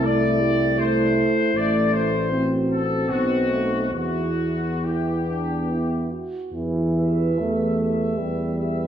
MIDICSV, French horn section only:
0, 0, Header, 1, 2, 480
1, 0, Start_track
1, 0, Key_signature, 1, "minor"
1, 0, Tempo, 761421
1, 972, Time_signature, 3, 2, 24, 8
1, 1943, Tempo, 862069
1, 4343, Tempo, 782269
1, 5250, End_track
2, 0, Start_track
2, 0, Title_t, "French horn section"
2, 0, Program_c, 0, 60
2, 0, Note_on_c, 0, 64, 63
2, 1339, Note_off_c, 0, 64, 0
2, 1446, Note_on_c, 0, 66, 39
2, 1931, Note_off_c, 0, 66, 0
2, 1939, Note_on_c, 0, 63, 41
2, 2414, Note_off_c, 0, 63, 0
2, 2417, Note_on_c, 0, 64, 46
2, 2855, Note_off_c, 0, 64, 0
2, 2917, Note_on_c, 0, 64, 45
2, 3138, Note_off_c, 0, 64, 0
2, 3164, Note_on_c, 0, 62, 44
2, 3393, Note_off_c, 0, 62, 0
2, 3402, Note_on_c, 0, 64, 45
2, 3631, Note_on_c, 0, 66, 41
2, 3633, Note_off_c, 0, 64, 0
2, 3863, Note_off_c, 0, 66, 0
2, 4102, Note_on_c, 0, 71, 43
2, 4588, Note_off_c, 0, 71, 0
2, 4600, Note_on_c, 0, 71, 38
2, 5065, Note_off_c, 0, 71, 0
2, 5072, Note_on_c, 0, 71, 35
2, 5250, Note_off_c, 0, 71, 0
2, 5250, End_track
0, 0, End_of_file